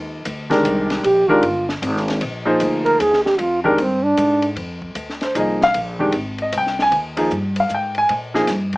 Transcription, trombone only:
1.05 G4
1.29 F4
2.85 A#4
3.00 G#4
3.25 G4
3.39 F4
3.64 G#3
3.78 C4
4.03 D4

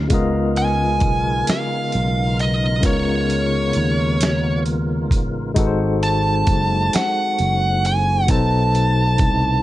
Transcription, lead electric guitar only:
0.58 G#5
1.50 F5
2.41 D#5
2.86 C#5
6.03 A5
6.95 F#5
7.86 G#5
8.31 A5

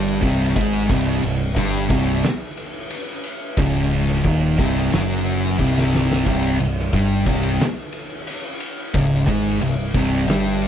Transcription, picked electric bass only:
Already playing: G1
0.22 C1
0.56 G#1
0.89 C1
1.23 C1
1.56 G1
1.90 C1
3.57 C#1
4.25 D#1
4.58 C1
4.92 F#1
5.59 C1
6.26 C1
6.59 C1
6.93 G1
7.27 C1
8.94 C#1
9.28 G#1
9.61 C1
9.95 C1
10.28 G1

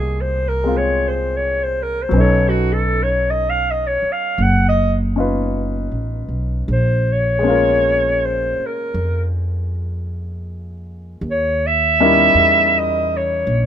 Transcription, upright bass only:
Already playing: C2
2.11 B1
4.02 muted upright bass stroke
4.38 F#1
5.91 A1
6.28 B1
6.68 A#1
8.58 muted upright bass stroke
8.94 F2
11.21 D#2
12.34 E2
13.47 A#1

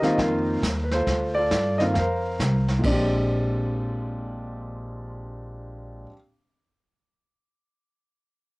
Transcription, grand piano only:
Already playing: G4 A#4 D#5
0.02 D#3 A#3 C4 F4
0.14 D#5
0.19 A#4 C5 F5
0.84 B4
0.92 F4 A4 C5
1.34 F4 A4 D5
1.78 D#3 A#3 C4 F4 D#5
1.94 F5
1.99 A#4 C5
2.79 A#2 G#3
2.85 C4 D4 D5
2.91 G4

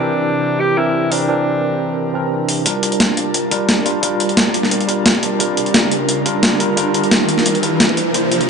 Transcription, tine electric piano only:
Already playing: E3 C4 D4 A#4
0.77 E3 C4 D4 A#4
1.11 E3 C4 D4 A#4
1.28 E3 C4 D4 A#4
2.13 E3 C4 D4 A#4
2.65 G3 D4 F4 A#4
3.51 G3 D4 F4 A#4
3.85 G3 D4 F4 A#4
4.02 G3 D4 F4 A#4
4.88 G3 D4 F4 A#4
5.39 G3 D4 F4 A#4
6.25 G3 D4 F4 A#4
6.59 G3 D4 F4 A#4
6.76 G3 D4 F4 A#4
7.62 G3 D4 F4 A#4
8.13 A#3 D4 E4 C5

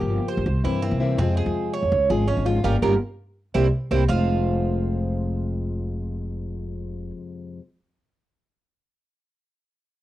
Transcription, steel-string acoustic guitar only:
Already playing: C#3 F3 A#3 F4 G4
0.47 muted steel-string acoustic guitar stroke
0.64 E3 A#3 C4 E4
0.82 E3 A#3 C4 E4
1.00 E3 A#3 C4 E4
1.19 C3 F3 G#3 C4 F4
1.92 muted steel-string acoustic guitar stroke
2.10 F3 G#3 C#4 F4
2.27 F3 G#3 C#4 F4
2.45 F3 G#3 C#4 F4
2.64 G3 A#3 C#4
2.83 G3 A#3 C#4
3.55 G3 A#3 C4
3.91 G3 A#3 C4
4.09 F2 C3 F3 G#3 C4 F4

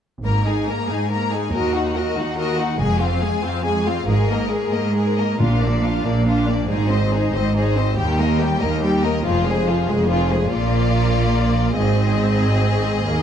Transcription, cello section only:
0.24 G#2
0.89 G#2
1.53 D#2
2.16 D#2
2.79 F2
3.43 F2
4.07 G#2
4.71 G#2
5.38 A#2
6.04 A#2
6.68 G#2
7.32 G#2
7.96 D#2
8.60 D#2
9.24 F2
9.88 F2
10.51 A#2
11.78 G#2
13.05 D#2

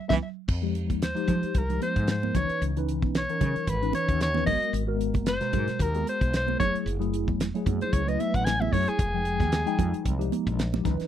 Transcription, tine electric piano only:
0.08 A#3 C4 E4
0.61 F3 G#3 D#4 G4
1.14 F3 G#3 D#4 G4
1.70 F3 G#3 D#4 G4
2.22 F3 G#3 D#4 A#4
2.34 E3 C#4 D#4 B4
2.77 E3 C#4 D#4 B4
3.29 E3 C#4 D#4 A#4
3.82 E3 C#4 D#4 B4
4.34 E3 C#4 D#4 B4
4.45 G#3 B3 F#4 A#4
4.86 G#3 B3 F#4 A#4
5.40 B2 G#3 F#4 A#4
5.93 G#3 B3 F#4 G#4
6.46 G#3 B3 F#4 A#4
6.59 F#3 A3 E4 G#4
6.99 F#3 A3 E4 G#4
7.55 F#3 A3 E4 G#4
8.06 F#3 A3 E4 B4
8.60 F#3 A3 E4 G#4
9.13 F3 G#3 D#4 G5
9.66 F3 G#3 D#4 G5
10.18 F3 G#3 D#4 G4
10.73 F3 G#3 D#4 G4
10.84 E3 C#4 D#4 B4

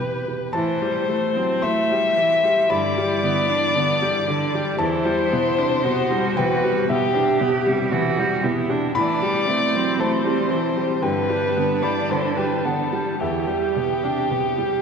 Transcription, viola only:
Already playing: G4
0.54 E3
0.82 G3
1.08 A3
1.36 C4
1.64 A3
1.91 G3
2.17 E3
2.44 G3
2.70 D3
2.98 G3
3.24 B3
3.50 D4
3.76 B3
4.02 G3
4.28 D3
4.54 G3
4.80 E3
5.05 G3
5.32 B3
5.58 D4
5.85 B3
6.11 G3
6.36 E3
6.63 G3
6.89 B3
7.15 D4
7.41 B3
7.66 G3
7.93 E3
8.19 G3
8.44 B3
8.70 D4
8.96 E3
9.24 G3
9.49 A3
9.76 C4
9.99 A3
10.25 G3
10.50 E3
10.76 G3
11.02 D3
11.29 G3
11.57 B3
11.83 G3
12.11 D3
12.38 G3
12.65 B3
12.93 G3
13.21 E3
13.48 G3
13.76 B3
14.03 D4
14.31 B3
14.58 G3

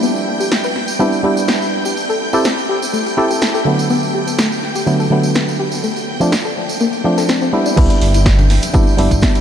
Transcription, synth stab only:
Already playing: G3 B3 D4 E4
0.99 G3 B3 D4 E4
1.23 G3 B3 D4 E4
2.33 C4 E4 G4 A4
3.17 C4 E4 G4 A4
3.65 D3 F#3 A3 B3
4.86 D3 F#3 A3 B3
5.10 D3 F#3 A3 B3
6.20 F3 A3 C4 D4
7.04 F3 A3 C4 D4
7.53 G3 B3 D4 E4
7.76 G3 B3 D4 E4
8.74 G3 B3 D4 E4
8.97 G3 B3 D4 E4

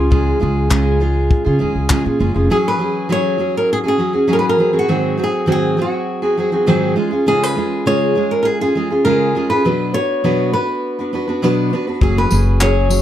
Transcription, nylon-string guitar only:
Already playing: F4
2.52 G#4
2.68 B4
3.12 C#5
3.57 A#4
3.73 G#4
3.88 G#4
4.33 A#4
4.39 B4
4.49 A#4
4.79 F#4
5.24 G#4
5.52 G#4
5.82 F#4
6.57 F4
7.28 G#4
7.43 B4
7.87 C#5
8.31 A#4
8.43 G#4 A#4
8.61 G#4
9.05 A#4
9.50 B4
9.94 C#5
10.53 B4
12.03 G#4
12.18 B4
12.62 C#5

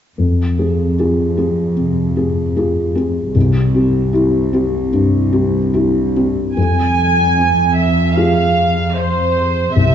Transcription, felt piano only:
0.18 F2
0.58 C4 G#4
0.99 F4 G#4
1.37 C4 G#4
1.76 C3
2.16 C4 G#4
2.56 F4 G#4
2.95 C4 G#4
3.36 C2
3.74 C4 G4
4.13 E4 G4
4.53 C4 G4
4.93 G2
5.32 C4 G4
5.74 E4 G4
6.16 C4 G4
6.57 F2
7.38 C4
8.17 F4 G#4
9.76 C2

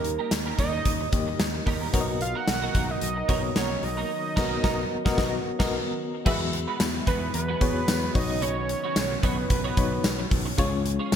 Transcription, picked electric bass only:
Already playing: D#2
0.31 D#2
0.59 D#2
0.86 D#2
1.13 D#2
1.40 D#2
1.67 D#2
1.94 B1
2.48 B1
2.75 B1
3.02 B1
3.29 B1
3.56 B1
3.83 B1
4.37 B1
4.64 B1
5.06 B1
5.18 B1
5.60 B1
6.26 E2
6.80 E2
7.07 E2
7.34 E2
7.61 E2
7.88 E2
8.15 B1
8.96 B1
9.23 B1
9.50 B1
9.77 B1
10.04 B1
10.31 B1
10.58 C#2
11.12 C#2

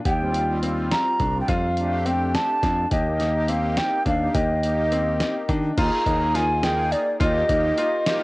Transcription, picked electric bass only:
0.05 D#2
1.20 C2
1.49 F2
2.63 F2
2.92 D#2
4.06 D#2
4.35 D#2
5.49 D#3
5.78 D#2
6.06 D#2
7.20 D#2
7.49 D#2

